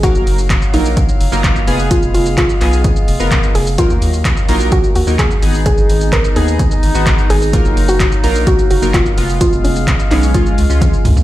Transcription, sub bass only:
X:1
M:4/4
L:1/16
Q:1/4=128
K:Ebm
V:1 name="Sub bass" clef=bass
z G,,, G,,,4 B,,,4 G,,, G,,,3 F,,,2- | F,,, F,,, F,,,4 C,,4 F,,, F,,,3 F,,,2- | F,,, E,, E,,4 B,,,4 E,, E,,3 A,,,2- | A,,, A,,, A,,,4 E,,4 A,,, A,,,3 A,,,2- |
A,,, G,,, G,,,4 B,,,4 G,,, G,,,3 F,,,2- | F,,, F,,, F,,,4 C,,4 D,, D,,3 D,,2 |]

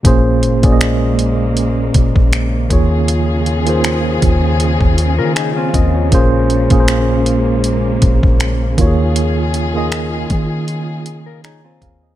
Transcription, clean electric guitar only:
X:1
M:4/4
L:1/16
Q:"Swing 16ths" 1/4=79
K:Bbm
V:1 name="Clean electric guitar"
z16 | z8 z3 [FB] [EA] [CF]3 | z16 | z8 z3 [FB] [EA] [CF]3 |]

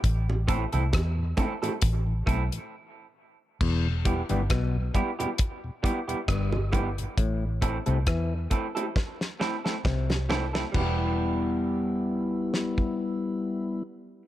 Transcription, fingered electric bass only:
X:1
M:4/4
L:1/16
Q:"Swing 16ths" 1/4=67
K:Em
V:1 name="Fingered electric bass" clef=bass
A,,,3 C,, E,,2 z2 A,,,2 B,,, z4 z | E,,,3 G,,, B,,,2 z6 G,,,4 | A,,,3 C,, E,,2 z6 C,,4 | E,,,16 |]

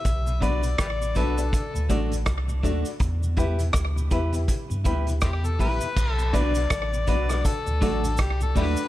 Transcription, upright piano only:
X:1
M:4/4
L:1/16
Q:"Swing 16ths" 1/4=81
K:Em
V:1 name="Upright piano"
z2 [DFBd] z3 [DFBd] [DFBd] z2 [DFAd] z3 [DFAd] z | z2 [EGBe] z3 [EGBe] [EGBe] z2 [EGBe] z3 [EGBe] z | z2 [DFBd] z3 [DFBd] [DFBd] z2 [DFAd] z3 [DFAd] z |]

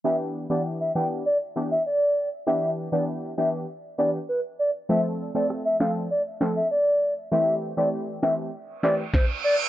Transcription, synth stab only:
X:1
M:4/4
L:1/16
Q:1/4=99
K:Ephr
V:1 name="Synth stab"
[E,B,DG]3 [E,B,DG]3 [E,B,DG]2 z2 [E,B,DG] z4 z | [E,B,DG]3 [E,B,DG]3 [E,B,DG]2 z2 [E,B,DG] z4 z | [F,A,CA]3 [F,A,CA]3 [F,A,CA]2 z2 [F,A,CA] z4 z | [E,A,CG]3 [E,A,CG]3 [E,A,CG]2 z2 [E,A,CG] z4 z |]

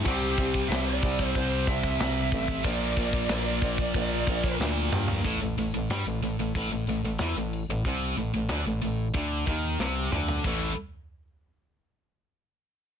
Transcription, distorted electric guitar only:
X:1
M:4/4
L:1/16
Q:1/4=92
K:Aphr
V:1 name="Distorted electric guitar" clef=bass
[C,G,C]16 | [B,,F,B,]16 | A,, A,, A,, A,, G, A,, A,, A,, A,, A,, A,, A,, E, A,,2 A,, | C,2 A,, A,, D, A,, A,,2 D,2 ^D,2 C,2 =D,2 |
[A,,E,A,]2 z12 z2 |]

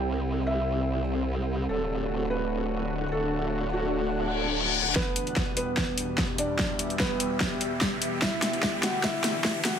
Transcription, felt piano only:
X:1
M:4/4
L:1/8
Q:"Swing 16ths" 1/4=147
K:Em
V:1 name="Felt piano"
g2 e3 z3 | A3 B4 A- | A2 F3 z3 | [B,B]3 [B,B]4 [Dd]- |
[Dd]2 [B,B]3 z3 | [Ee]3 [Ff] [Ee]3 [Ff] |]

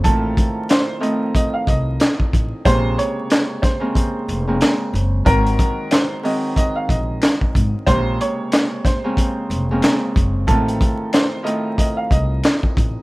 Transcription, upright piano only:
X:1
M:4/4
L:1/16
Q:"Swing 16ths" 1/4=92
K:Bbm
V:1 name="Upright piano"
=A4 c2 e2 e f e6 | c2 d4 c8- c2 | B4 c2 e2 e f e6 | c2 d4 c8- c2 |
=A4 c2 e2 e f e6 |]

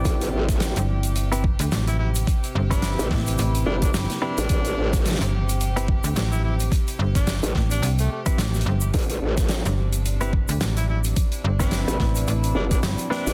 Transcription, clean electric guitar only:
X:1
M:4/4
L:1/16
Q:"Swing 16ths" 1/4=108
K:Am
V:1 name="Clean electric guitar"
[CEGd]8- [CEGd] [CEGB] z6 | z3 [CEGB]8- [CEGB]3 [CEGB] z | z8 z [CEGB] z6 | z8 z3 [CEGB] z4 |
z8 z [CEGB] z6 | z3 [CEGB]8- [CEGB]3 [CEGB] z |]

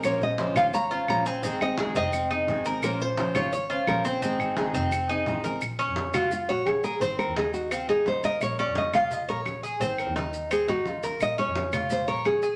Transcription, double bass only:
X:1
M:4/4
L:1/16
Q:1/4=172
K:Bbm
V:1 name="Double bass" clef=bass
B,,,2 B,,,4 A,,,6 B,,,4 | A,,,2 A,,,4 F,,,6 A,,,4 | B,,,2 B,,,4 A,,,6 B,,,4 | A,,,2 A,,,4 F,,,6 =A,,,4 |
B,,,3 F,,6- F,, B,,,6 | A,,,3 E,,6- E,, A,,,6 | B,,,3 F,,6- F,, B,,,6 | A,,,3 E,,6- E,, A,,,6 |
B,,,3 F,,6- F,, B,,,6 |]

